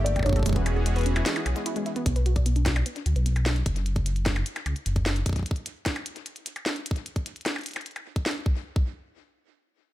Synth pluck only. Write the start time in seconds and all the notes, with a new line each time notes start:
0.06 A3
0.16 G4
0.26 D4
0.36 A4
0.46 G#3
0.56 B3
0.66 C#4
0.76 G#4
0.86 G#3
0.96 B3
1.06 C#4
1.16 E4
1.26 G#3
1.36 E4
1.46 G#4
1.56 G#3
1.66 E4
1.76 G#3
1.86 E4
1.96 B3
2.06 B3
2.16 B4
2.26 F#4
2.36 D5
2.46 B3
2.56 D4
2.66 F#4
2.76 D5
2.86 B3
2.96 D4
3.06 F#4
3.16 B4
3.26 B3
3.36 B4
3.46 F#4
3.56 D5